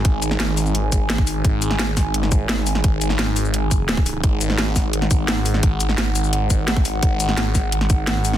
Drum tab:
HH |x-x-x-o-x-x-x-o-|x-x-x-o-x-x-x-o-|x-x-x-o-x-x-x-o-|x-x-x-o-x-x-x-o-|
SH |--x---xx--x---x-|--x---x---x---x-|--x---xx--x---x-|--x---x---x---x-|
SD |---oo-------o---|---oo-o--o--o--o|---oo-------o---|---oo-o--o--o--o|
BD |o---------o--o--|o-----o---o-----|o---------o--o--|o-----o---o-----|

HH |x-x-x-o-x-x-x-o-|x-x-x-o-x-x-x-o-|
SH |--x---xx--x---x-|--x---x---x---x-|
SD |---oo-------o---|---oo-o--o--o--o|
BD |o---------o--o--|o-----o---o-----|